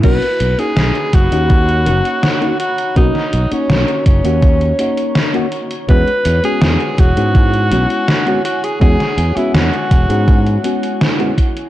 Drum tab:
CC |x---------------|----------------|----------------|----------------|
HH |xxxxxxxxxxxxxxxx|xxxxxxxxxxxxxxxx|xxxxxxxxxxxxxxxx|xxxxxxxxxxxxxxxx|
SD |----o-------o---|-o--o-------o---|----o-------o---|-o--o-------o---|
BD |o-----o-o-------|o-----o-o-------|o-----o-o-------|o-----o-o-----o-|